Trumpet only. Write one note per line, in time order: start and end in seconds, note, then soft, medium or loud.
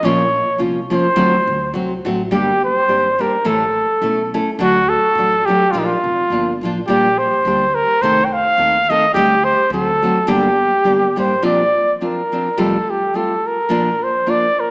0.05 0.62 C#5 medium
0.93 1.71 C5 loud
2.33 2.61 G4 medium
2.64 3.23 C5 medium
3.21 3.49 A#4 medium
3.47 4.34 A4 medium
4.61 4.91 F#4 loud
4.89 5.47 A4 loud
5.45 5.73 G4 medium
5.72 5.80 F4 medium
5.79 5.87 D#4 medium
5.85 6.59 F4 medium
6.87 7.20 G4 medium
7.18 7.76 C5 medium
7.75 8.03 A#4 medium
8.02 8.26 C5 loud
8.25 8.35 G5 medium
8.33 8.91 F5 loud
8.90 9.13 D#5 medium
9.14 9.46 G4 medium
9.45 9.71 C5 loud
9.73 10.31 A4 medium
10.30 11.18 G4 medium
11.19 11.43 C5 medium
11.45 11.98 D5 medium
12.04 12.62 A#4 medium
12.60 12.92 A4 medium
12.90 13.18 G4 medium
13.16 13.49 A4 medium
13.47 14.05 A#4 medium
14.03 14.32 C5 medium
14.30 14.62 D5 medium
14.60 14.71 A#4 medium